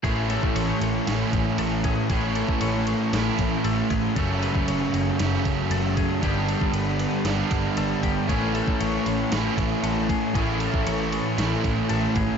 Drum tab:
RD |x-x-x-x-x-x-x-x-|x-x-x-x-x-x-x-x-|x-x-x-x-x-x-x-x-|x-x-x-x-x-x-x-x-|
SD |--------o-------|--------o-------|--------o-------|--------o-------|
BD |o--o------o---o-|o--o------o---o-|o--o------o---o-|o--o------o---o-|

RD |x-x-x-x-x-x-x-x-|x-x-x-x-x-x-x-x-|
SD |---o----o-------|--------o-------|
BD |o--o------o---o-|o--o------o---o-|